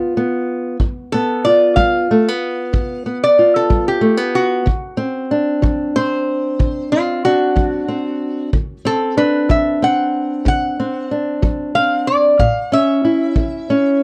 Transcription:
Already playing: G3 B3 F4
0.17 B3
0.80 G2, kick
1.12 B3 A4
1.45 F4 D5
1.76 G3 F5, kick
2.11 A3
2.28 B3
2.73 G2, kick
3.06 B3
3.24 D5
3.39 F4
3.56 A4
3.70 G3, kick
3.88 G4
4.01 A3
4.17 B3
4.35 F#4
4.66 D3, kick
4.97 C4
5.31 D4
5.62 F#3, kick
5.96 C4 C5
6.59 D3, kick
6.92 C4 F4
7.25 D4 F#4
7.56 F#3, kick
7.88 C4
8.53 D3, kick
8.85 C4 A4
9.17 D4 B4
9.49 F#3 E5, kick
9.82 C4 F#5
10.45 D3 F#5, kick
10.80 C4
11.11 D4
11.42 F#3, kick
11.75 C4 F5
12.07 D5
12.39 A2 F5, kick
12.72 C#4 E5
13.05 E4
13.36 E3, kick
13.70 C#4

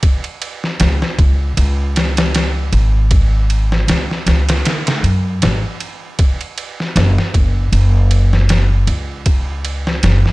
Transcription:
0.03 kick, ride
0.24 ride
0.42 ride
0.64 snare
0.80 C#2, snare, ride
1.02 snare
1.19 C#2, kick, ride
1.57 C#2, ride
1.96 snare, ride
2.17 snare, ride
2.35 snare, ride
2.73 G#1, ride
3.11 kick, ride
3.50 ride
3.72 snare
3.88 C#2, snare, ride
4.11 snare
4.26 C#2, snare, ride
4.49 snare, ride
4.65 snare, ride
4.87 snare, ride
5.03 F#2, ride
5.42 G#1, snare, ride
5.80 ride
6.19 kick, ride
6.41 ride
6.58 ride
6.80 snare
6.96 F#1, snare, ride
7.18 snare
7.34 F#1, kick, ride
7.72 F#1, ride
8.11 ride
8.33 snare
8.49 snare, ride
8.87 C#2, ride
9.26 kick, ride
9.65 ride
9.87 snare
10.03 F#1, snare, ride
10.26 snare

